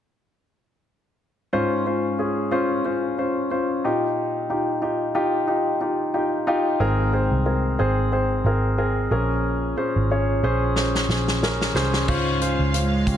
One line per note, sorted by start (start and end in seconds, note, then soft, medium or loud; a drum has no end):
1.53 2.48 G#2 medium
1.53 1.83 C#4 medium
1.53 1.83 F4 medium
1.53 1.84 C5 medium
1.86 2.16 C#4 medium
1.86 2.17 F4 medium
1.86 2.17 C5 medium
2.19 2.49 C#4 medium
2.19 2.49 F4 medium
2.19 2.50 G#4 medium
2.51 2.82 C#4 medium
2.51 2.82 F4 medium
2.51 2.83 C5 medium
2.85 3.15 C#4 medium
2.85 3.16 F4 medium
2.85 3.16 C5 medium
3.18 3.49 C#4 medium
3.18 3.49 F4 medium
3.18 3.49 C5 medium
3.51 3.81 C#4 medium
3.51 3.81 F4 medium
3.51 3.82 C5 medium
3.84 4.79 A#2 medium
3.84 4.46 D#4 medium
3.84 4.46 F4 medium
3.84 4.46 G4 medium
4.50 4.80 D#4 medium
4.50 4.80 F4 medium
4.50 4.81 G4 medium
4.82 5.13 D#4 medium
4.82 5.13 F4 medium
4.82 5.13 G4 medium
5.15 5.46 D#4 medium
5.15 5.46 F4 medium
5.15 5.46 G4 medium
5.47 5.79 D#4 medium
5.47 5.79 F4 medium
5.47 5.79 G4 medium
5.81 6.12 D#4 medium
5.81 6.12 F4 medium
5.81 6.12 G4 medium
6.14 6.45 D#4 medium
6.14 6.45 F4 medium
6.14 6.45 G4 medium
6.14 6.45 G5 medium
6.47 6.78 D#4 medium
6.47 6.78 F4 medium
6.47 6.78 G4 medium
6.47 6.78 F5 medium
6.80 7.28 G#1 medium
6.80 7.75 G#2 medium
6.80 7.75 D#3 medium
6.80 7.11 C4 medium
6.80 7.11 G#4 medium
6.80 7.11 A#4 medium
7.13 7.44 C4 medium
7.13 7.44 G#4 medium
7.13 7.44 C5 medium
7.31 7.76 C2 medium
7.46 7.77 C4 medium
7.46 7.77 G#4 medium
7.46 7.77 A#4 medium
7.79 8.41 G#1 medium
7.79 8.10 C4 medium
7.79 8.10 G#4 medium
7.79 8.10 C5 medium
8.12 8.43 C4 medium
8.12 8.43 G#4 medium
8.12 8.43 C5 medium
8.44 9.07 G#1 medium
8.44 8.76 C4 medium
8.44 8.77 G#4 medium
8.44 8.77 A#4 medium
8.78 9.09 C4 medium
8.78 9.09 G#4 medium
8.78 9.09 A#4 medium
9.11 9.73 A#1 medium
9.11 10.06 A#2 medium
9.11 10.06 F3 medium
9.11 9.73 C#4 medium
9.11 9.73 G#4 medium
9.11 9.73 A#4 medium
9.77 10.08 C#4 medium
9.77 10.08 G#4 medium
9.77 10.08 C5 medium
9.96 10.40 G#1 medium
10.11 10.41 C#4 medium
10.11 10.42 G#4 medium
10.11 10.42 C#5 medium
10.43 11.05 A#1 medium
10.43 10.74 C#4 medium
10.43 10.74 G#4 medium
10.43 10.75 C5 medium
10.76 11.07 C#4 medium
10.76 11.08 G#4 medium
10.76 11.08 C5 medium
10.76 snare soft
10.95 snare soft
11.08 11.71 A#1 medium
11.08 11.40 C#4 medium
11.08 11.40 G#4 medium
11.08 11.41 C5 medium
11.08 snare medium
11.28 snare soft
11.42 11.73 C#4 medium
11.42 11.73 G#4 medium
11.42 11.74 A#4 medium
11.42 snare medium
11.61 snare medium
11.74 12.05 C2 medium
11.74 12.06 C#4 medium
11.74 12.06 G#4 medium
11.74 12.06 C5 medium
11.74 snare medium
11.94 snare medium
12.08 12.56 C#2 medium
12.08 13.03 G#2 medium
12.08 12.39 C#4 medium
12.08 12.39 F4 medium
12.08 12.39 C5 medium
12.08 13.17 F5 medium
12.08 kick medium
12.08 crash medium
12.41 12.72 C#4 medium
12.41 12.72 F4 medium
12.41 12.72 C5 medium
12.41 closed hi-hat medium
12.59 13.03 C#2 medium
12.74 13.17 G#3 medium
12.74 13.05 C#4 medium
12.74 13.05 F4 medium
12.74 13.05 C5 medium
12.74 closed hi-hat medium
13.07 13.17 C#2 medium
13.07 13.17 C#4 medium
13.07 13.17 F4 soft
13.07 13.17 G4 medium
13.07 kick medium
13.07 closed hi-hat medium